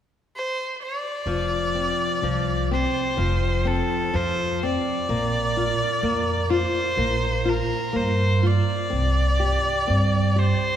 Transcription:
0.36 erhu C5
0.83 erhu D5
1.26 upright bass F1, nylon-string guitar F3
1.75 nylon-string guitar C4
2.22 upright bass C2, nylon-string guitar F3
2.71 nylon-string guitar C4, erhu C5
3.17 upright bass F1, nylon-string guitar F3
3.65 nylon-string guitar C4, erhu A4
4.14 upright bass F2, nylon-string guitar F3, erhu C5
4.63 nylon-string guitar C4, erhu D5
5.09 upright bass A#1, nylon-string guitar A#3
5.57 nylon-string guitar F4
6.03 upright bass F2, nylon-string guitar A#3
6.50 nylon-string guitar F4, erhu C5
6.97 upright bass A#1, nylon-string guitar A#3
7.45 nylon-string guitar F4, erhu A#4
7.93 upright bass G2, nylon-string guitar A#3, erhu C5
8.43 nylon-string guitar F4, erhu D5
8.90 upright bass C2, nylon-string guitar C4
9.40 nylon-string guitar G4
9.87 upright bass G2, nylon-string guitar C4
10.36 nylon-string guitar G4, erhu C5

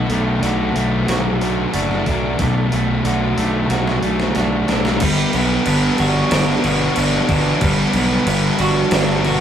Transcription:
Already playing: overdriven electric guitar B2, distorted electric guitar B2
0.09 fingered electric bass B1, overdriven electric guitar A3, clean electric guitar A3, distorted electric guitar A3, open hi-hat
0.42 fingered electric bass B1, clean electric guitar A3, overdriven electric guitar D4, distorted electric guitar F#4, open hi-hat
0.75 fingered electric bass B1, overdriven electric guitar A3, clean electric guitar A3, distorted electric guitar A3, open hi-hat
1.07 fingered electric bass B1, distorted electric guitar F#3, overdriven electric guitar F#4, clean electric guitar F#4, snare, open hi-hat
1.41 clean electric guitar A3, distorted electric guitar A3, overdriven electric guitar D4, open hi-hat
1.73 fingered electric bass F#1, clean electric guitar A3, distorted electric guitar D4, overdriven electric guitar F#4, open hi-hat
1.91 snare
2.06 fingered electric bass B1, distorted electric guitar F#3, overdriven electric guitar A3, clean electric guitar D4, kick, open hi-hat
2.39 fingered electric bass B1, overdriven electric guitar B2, distorted electric guitar B2, clean electric guitar A3, kick, open hi-hat
2.71 fingered electric bass B1, overdriven electric guitar A3, distorted electric guitar A3, clean electric guitar A3, open hi-hat
3.04 fingered electric bass B1, clean electric guitar A3, overdriven electric guitar D4, distorted electric guitar F#4, open hi-hat
3.37 fingered electric bass B1, overdriven electric guitar A3, clean electric guitar A3, distorted electric guitar A3, open hi-hat
3.70 fingered electric bass B1, distorted electric guitar F#3, overdriven electric guitar F#4, clean electric guitar F#4, snare, open hi-hat
3.87 snare
4.03 fingered electric bass B1, clean electric guitar A3, distorted electric guitar A3, overdriven electric guitar D4, open hi-hat
4.20 snare
4.35 fingered electric bass B1, clean electric guitar A3, distorted electric guitar D4, overdriven electric guitar F#4, snare, open hi-hat
4.68 fingered electric bass B1, distorted electric guitar F#3, overdriven electric guitar A3, clean electric guitar D4, snare, open hi-hat
4.85 snare
5.00 fingered electric bass G1, overdriven electric guitar G3, distorted electric guitar G3, clean electric guitar B3, kick, crash
5.33 fingered electric bass B1, overdriven electric guitar B3, distorted electric guitar B3, clean electric guitar B3, crash
5.66 fingered electric bass G1, distorted electric guitar G3, clean electric guitar B3, overdriven electric guitar D4, crash
5.98 fingered electric bass G1, distorted electric guitar D4, overdriven electric guitar F#4, clean electric guitar F#4, crash
6.31 fingered electric bass G1, distorted electric guitar B3, overdriven electric guitar D4, clean electric guitar D4, snare, crash
6.64 fingered electric bass G1, overdriven electric guitar B3, clean electric guitar F#4, distorted electric guitar F#4, crash
6.96 fingered electric bass G1, clean electric guitar B3, distorted electric guitar D4, overdriven electric guitar F#4, crash
7.14 snare
7.29 fingered electric bass G1, distorted electric guitar B3, overdriven electric guitar D4, clean electric guitar D4, kick, crash
7.61 fingered electric bass G1, overdriven electric guitar G3, distorted electric guitar G3, clean electric guitar B3, kick, crash
7.93 fingered electric bass B1, clean electric guitar B3, distorted electric guitar B3, overdriven electric guitar B3, crash
8.26 fingered electric bass G1, distorted electric guitar G3, clean electric guitar B3, overdriven electric guitar D4, crash
8.59 fingered electric bass G1, distorted electric guitar D4, overdriven electric guitar F#4, clean electric guitar F#4, crash
8.91 fingered electric bass G1, distorted electric guitar B3, clean electric guitar D4, overdriven electric guitar D4, snare, crash
9.24 overdriven electric guitar B3, distorted electric guitar F#4, clean electric guitar F#4, crash

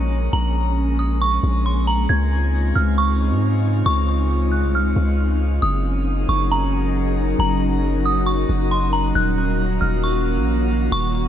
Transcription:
Already playing: 808-style bass A#1, ambient pad G#3 A#3 C#4
0.33 808-style bass A#1, synth bell A#5
0.99 synth bell D#6
1.22 synth bell C#6
1.43 808-style bass A#1
1.66 synth bell C6
1.87 synth bell A#5
2.09 808-style bass C#2, ambient pad C#3 C4 D#4 F4, synth bell G#6
2.76 808-style bass C#2, synth bell F6
2.98 synth bell C#6
3.31 808-style bass G#2
3.86 808-style bass C#2, synth bell C#6
4.52 synth bell F#6
4.63 808-style bass C2
4.75 synth bell F6
4.80 808-style bass C#2
4.96 808-style bass C#2
5.62 808-style bass F#1, ambient pad F#3 C#4 D#4 G#4 A#4, synth bell D#6
6.29 808-style bass F#1, synth bell C#6
6.52 synth bell A#5
7.39 808-style bass F#1, ambient pad F#4, synth bell A#5
8.06 synth bell D#6
8.26 synth bell C#6
8.49 808-style bass F#1
8.71 synth bell C6
8.93 synth bell A#5
9.15 808-style bass D#1, ambient pad D#3 A#3 C#4 F4 F#4, synth bell F#6
9.81 808-style bass D#1, synth bell F6
10.04 synth bell C#6
10.37 808-style bass A#1
10.92 808-style bass D#1, synth bell C#6

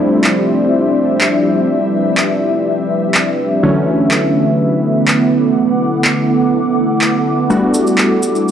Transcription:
Already playing: analog synth pad F3 G3 E4 C5 D5, synth keys F3 G3 A3 C4 E4, ambient pad C4 D4 G4 E5
0.24 clap
1.21 clap
1.70 analog synth pad B4
2.17 clap
3.14 clap
3.63 synth keys D3 E3 F#3 A3 C#4, analog synth pad D3 A3 E4 E5, ambient pad B3
3.83 ambient pad E4
4.11 clap
4.23 ambient pad F#5
4.63 ambient pad A4
4.85 ambient pad D6
5.08 clap
5.57 analog synth pad D6
6.05 clap
7.01 clap
7.50 synth keys G3 A3 B3 D4 F#4, analog synth pad G3 F#4 A4, cabasa
7.74 cabasa
7.87 cabasa
7.98 clap, cabasa
8.23 cabasa
8.35 cabasa

